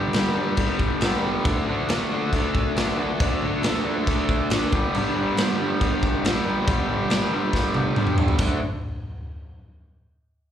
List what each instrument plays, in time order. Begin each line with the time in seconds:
Already playing: distorted electric guitar G2 D3 G3 D4, transistor combo organ B4 D5 G5
0.13 distorted electric guitar G2 D3, snare, crash
0.17 distorted electric guitar G3
0.35 distorted electric guitar D3 G3
0.57 kick, crash
0.79 kick
1.01 distorted electric guitar G2 D3 G3, snare, crash
1.22 distorted electric guitar D3 G3
1.44 distorted electric guitar D3 A3 D4, transistor combo organ A4 D5, kick, crash
1.49 transistor combo organ F#5
1.66 distorted electric guitar A3 D4
1.89 distorted electric guitar D3 A3 D4, snare, crash
2.10 distorted electric guitar A3 D4
2.33 kick, crash
2.55 kick
2.76 distorted electric guitar D3 A3 D4, snare, crash
2.97 distorted electric guitar A3 D4
3.20 distorted electric guitar D3 A3 D4, kick, crash
3.42 distorted electric guitar A3 D4
3.63 distorted electric guitar D3 A3 D4, snare, crash
3.86 distorted electric guitar A3 D4
4.07 kick, crash
4.29 kick
4.50 distorted electric guitar D3 A3 D4, snare, crash
4.72 distorted electric guitar G2 D3 G3, transistor combo organ B4 D5 G5, kick
4.94 distorted electric guitar G2 D3 G3, crash
5.16 distorted electric guitar D3 G3
5.37 distorted electric guitar G2 D3 G3, snare, crash
5.58 distorted electric guitar D3 G3
5.81 kick, crash
6.03 kick
6.22 distorted electric guitar G2 D3 G3, snare, crash
6.45 distorted electric guitar D3 G3
6.66 distorted electric guitar G2 D3 G3, kick, crash
6.88 distorted electric guitar D3 G3
7.09 distorted electric guitar G2 D3 G3, snare, crash
7.31 distorted electric guitar D3 G3
7.53 kick, snare
7.74 high tom
7.96 distorted electric guitar G2 D3 G3, mid tom
8.07 mid tom
8.18 distorted electric guitar D3 G3, floor tom
8.28 floor tom
8.38 distorted electric guitar D3 A3 D4, transistor combo organ A4 D5 F#5, kick, crash